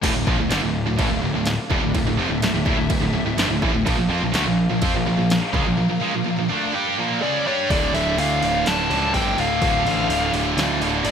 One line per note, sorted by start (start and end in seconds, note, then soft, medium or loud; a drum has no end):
0.02 0.14 D1 loud
0.02 0.14 D2 medium
0.02 0.15 A2 loud
0.02 7.66 F3 medium
0.02 3.82 D4 medium
0.02 3.82 A4 medium
0.02 1.93 F5 medium
0.02 kick loud
0.02 crash loud
0.02 crash medium
0.15 0.26 D1 medium
0.15 0.26 D2 medium
0.15 0.28 A2 medium
0.27 0.38 A#1 loud
0.27 0.38 A#2 loud
0.27 0.39 F3 loud
0.27 kick loud
0.39 0.50 D1 medium
0.39 0.50 D2 medium
0.39 0.51 A2 medium
0.51 0.62 G1 loud
0.51 0.62 G2 medium
0.51 0.62 D3 medium
0.51 snare loud
0.51 crash medium
0.62 0.85 D1 medium
0.62 0.82 D2 medium
0.62 0.82 A2 medium
0.86 0.98 D1 medium
0.86 0.99 D2 medium
0.86 0.99 A2 medium
0.98 1.09 A1 loud
0.98 1.11 A2 loud
0.98 1.11 E3 loud
0.98 kick loud
0.98 crash medium
1.10 1.21 D1 medium
1.10 1.24 D2 medium
1.10 1.24 A2 medium
1.21 1.33 D1 medium
1.21 1.35 D2 medium
1.21 1.36 A2 medium
1.33 1.56 D1 medium
1.33 1.55 D2 medium
1.37 1.55 A2 medium
1.46 snare loud
1.46 crash medium
1.70 1.81 E1 medium
1.70 1.82 E2 loud
1.70 1.82 B2 medium
1.70 kick loud
1.81 1.93 D1 medium
1.81 1.94 D2 medium
1.81 1.94 A2 medium
1.94 2.05 D1 medium
1.94 2.05 D2 medium
1.94 2.05 A2 medium
1.94 3.85 E5 medium
1.94 kick medium
1.94 crash medium
2.05 2.17 D1 medium
2.05 2.18 D2 medium
2.05 2.18 A2 medium
2.18 2.29 F1 loud
2.18 2.30 F2 loud
2.18 2.30 C3 loud
2.30 2.41 D1 medium
2.30 2.41 D2 medium
2.30 2.42 A2 medium
2.42 2.53 D1 medium
2.42 2.53 D2 medium
2.42 2.53 A2 medium
2.42 snare loud
2.42 crash medium
2.54 2.65 D1 medium
2.54 2.64 D2 medium
2.54 2.64 A2 medium
2.65 2.76 D1 loud
2.65 2.76 D2 medium
2.65 2.76 A2 loud
2.65 kick loud
2.77 2.89 D1 medium
2.77 2.88 D2 medium
2.77 2.88 A2 medium
2.89 3.00 D1 medium
2.89 2.98 D2 medium
2.89 2.99 A2 medium
2.89 kick loud
2.89 crash medium
3.00 3.12 D1 medium
3.00 3.11 D2 medium
3.00 3.12 A2 medium
3.12 3.24 D1 medium
3.12 3.24 D2 medium
3.12 3.25 A2 medium
3.25 3.36 D1 medium
3.25 3.36 D2 medium
3.25 3.37 A2 medium
3.37 3.48 G1 loud
3.37 3.49 G2 loud
3.37 3.49 D3 loud
3.37 snare loud
3.37 crash medium
3.48 3.61 D1 medium
3.48 3.63 D2 medium
3.48 3.62 A2 medium
3.62 3.72 A1 loud
3.62 3.73 A2 medium
3.62 3.74 E3 loud
3.62 kick loud
3.73 3.85 D1 medium
3.73 3.86 D2 medium
3.73 3.86 A2 medium
3.86 3.97 A#1 loud
3.86 3.96 A#2 loud
3.86 3.96 F3 loud
3.86 7.67 A#3 medium
3.86 7.67 A#4 medium
3.86 7.67 F5 medium
3.86 kick loud
3.86 crash medium
3.97 4.08 A#1 medium
3.97 4.10 A#2 medium
3.97 4.08 F3 medium
4.09 4.21 F2 loud
4.09 4.21 F3 medium
4.09 4.22 C4 loud
4.22 4.34 A#1 medium
4.22 4.34 A#2 medium
4.22 4.32 F3 medium
4.33 4.45 D2 loud
4.33 4.44 D3 medium
4.33 4.45 A3 loud
4.33 snare loud
4.33 crash medium
4.45 4.68 A#1 medium
4.45 4.65 A#2 medium
4.45 4.65 F3 medium
4.70 4.81 A#1 medium
4.70 4.82 A#2 medium
4.70 4.80 F3 medium
4.81 4.93 F2 loud
4.81 4.93 F3 medium
4.81 4.94 C4 loud
4.81 kick loud
4.81 crash medium
4.94 5.05 A#1 medium
4.94 5.05 A#2 medium
4.94 5.06 F3 medium
5.06 5.17 A#1 medium
5.06 5.16 A#2 medium
5.06 5.16 F3 medium
5.17 5.41 A#1 medium
5.17 5.37 A#2 medium
5.17 5.37 F3 medium
5.30 snare loud
5.30 crash medium
5.53 5.65 C#2 loud
5.53 5.65 C#3 loud
5.53 5.65 G#3 loud
5.53 kick loud
5.65 5.78 A#1 medium
5.65 5.76 A#2 medium
5.65 5.77 F3 medium
5.77 5.87 A#2 medium
5.77 5.88 F3 medium
5.88 6.01 A#2 medium
5.88 5.99 F3 medium
6.00 6.12 C#3 medium
6.00 6.13 G#3 loud
6.12 6.23 A#2 medium
6.12 6.23 F3 medium
6.24 6.35 A#2 medium
6.24 6.36 F3 medium
6.36 6.49 A#2 medium
6.36 6.48 F3 medium
6.48 6.72 D3 medium
6.48 6.71 A3 loud
6.48 6.71 D4 loud
6.72 6.96 G3 loud
6.72 6.97 D4 loud
6.72 6.97 G4 medium
6.97 7.21 A#2 medium
6.97 7.21 F3 medium
6.97 7.21 A#3 loud
7.22 7.45 C#3 loud
7.22 7.46 G#3 loud
7.22 7.46 C#4 loud
7.22 7.47 D5 medium
7.46 7.69 G3 medium
7.46 7.70 D4 loud
7.46 7.70 G4 loud
7.46 7.70 C#5 medium
7.70 7.93 D1 loud
7.70 7.95 D2 loud
7.70 7.94 A2 medium
7.70 7.96 D3 loud
7.70 11.11 F3 medium
7.70 11.11 D4 medium
7.70 11.11 A4 medium
7.70 7.93 D5 medium
7.70 9.61 D5 medium
7.70 kick loud
7.70 open hi-hat medium
7.94 8.17 D1 medium
7.94 8.19 D2 medium
7.94 8.19 A2 medium
7.94 8.20 D3 medium
7.94 8.17 E5 loud
7.94 open hi-hat medium
8.17 8.41 D2 loud
8.17 8.41 D2 medium
8.17 8.41 A2 medium
8.17 8.43 D3 medium
8.17 8.68 F5 medium
8.17 open hi-hat medium
8.42 8.65 D1 medium
8.42 8.65 D2 medium
8.42 8.66 A2 loud
8.42 8.66 D3 loud
8.42 open hi-hat medium
8.66 8.89 D1 loud
8.66 8.89 D2 medium
8.66 8.89 A2 medium
8.66 8.90 D3 medium
8.66 9.16 A5 loud
8.66 snare loud
8.66 open hi-hat medium
8.90 9.13 C#2 medium
8.90 9.12 D2 medium
8.90 9.12 A2 medium
8.90 9.13 D3 medium
8.90 snare soft
8.90 open hi-hat medium
9.13 9.37 G1 medium
9.13 9.36 D2 medium
9.13 9.37 A2 loud
9.13 9.37 D3 loud
9.13 9.39 G5 medium
9.13 kick medium
9.13 open hi-hat medium
9.38 9.61 D1 medium
9.38 9.59 D2 medium
9.38 9.60 A2 medium
9.38 9.61 D3 loud
9.38 10.31 F5 medium
9.38 open hi-hat medium
9.61 9.85 D1 loud
9.61 9.85 D2 medium
9.61 9.85 A2 medium
9.61 9.86 D3 loud
9.61 11.11 F5 medium
9.61 kick loud
9.61 open hi-hat medium
9.85 10.08 A1 medium
9.85 10.09 D2 medium
9.85 10.10 A2 medium
9.85 10.10 D3 medium
9.85 open hi-hat medium
10.09 10.32 D1 loud
10.09 10.33 D2 medium
10.09 10.33 A2 medium
10.09 10.34 D3 medium
10.09 open hi-hat medium
10.33 10.56 D1 medium
10.33 10.57 D2 medium
10.33 10.58 A2 medium
10.33 10.58 D3 loud
10.33 open hi-hat medium
10.57 10.80 D2 medium
10.57 10.81 A2 medium
10.57 10.81 D3 medium
10.57 snare loud
10.57 open hi-hat medium
10.80 11.04 D1 medium
10.80 11.06 D2 medium
10.80 11.06 A2 medium
10.80 11.07 D3 loud
10.80 open hi-hat medium
11.05 11.11 G1 medium
11.05 11.11 D2 loud
11.05 11.11 A2 loud
11.05 11.11 D5 medium
11.05 open hi-hat medium